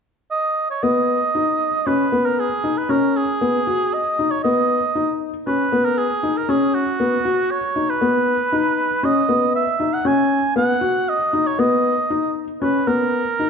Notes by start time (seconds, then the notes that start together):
0.31 D#5
0.71 C#5
0.83 B3 D#5
1.35 D#4
1.87 C#4 B4
2.12 B3
2.26 A#4
2.40 G#4
2.64 D#4
2.78 B4
2.89 C#4 A#4
3.17 G#4
3.41 B3
3.67 F#4
3.94 D#5
4.19 D#4
4.31 C#5
4.44 B3 D#5
4.95 D#4
5.47 C#4 B4
5.72 B3
5.85 A#4
5.98 G#4
6.23 D#4
6.37 A#4
6.49 C#4 G#4
6.75 F#4
7.00 B3
7.25 F#4
7.51 C#5
7.76 D#4
7.90 B4
8.01 B3
8.52 D#4
9.03 C#4 D#5
9.29 B3
9.56 E5
9.80 D#4
9.94 F#5
10.05 C#4 G#5
10.56 B3 F#5
10.81 F#4
11.09 D#5
11.33 D#4
11.47 C#5
11.59 B3 D#5
12.10 D#4
12.62 C#4 B4
12.87 B3 A#4
13.39 D#4